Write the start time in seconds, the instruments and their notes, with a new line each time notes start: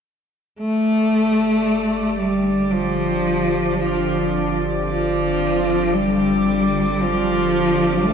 0.57 sub bass G1, ambient pad D3, synth drone D3 G4, cello A3, synth texture D5 D6
1.11 ambient pad G3
2.05 ambient pad C4
2.19 cello G3
2.33 ambient pad A4
2.72 cello F3
3.48 ambient pad F4
3.79 cello F3
4.88 cello F3
5.94 cello G3
7.01 cello F3
8.07 cello A3